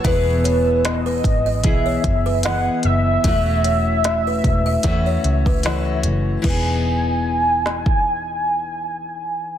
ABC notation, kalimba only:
X:1
M:4/4
L:1/16
Q:"Swing 16ths" 1/4=75
K:E
V:1 name="Kalimba"
e2 c2 z B z d z c z B d3 z | e2 c2 z B z e z c z B c3 z | B12 z4 |]